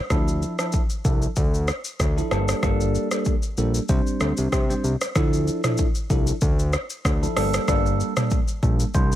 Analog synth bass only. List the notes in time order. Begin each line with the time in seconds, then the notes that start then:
0.10 D2
1.05 C2
1.37 D2
2.00 D2
2.31 G1
2.63 G1
3.58 A#1
3.89 C2
4.21 D2
4.38 C2
4.52 C3
4.84 C2
5.16 D2
6.10 C2
6.42 D2
7.05 D2
7.37 G1
7.68 G1
8.63 A#1
8.95 C2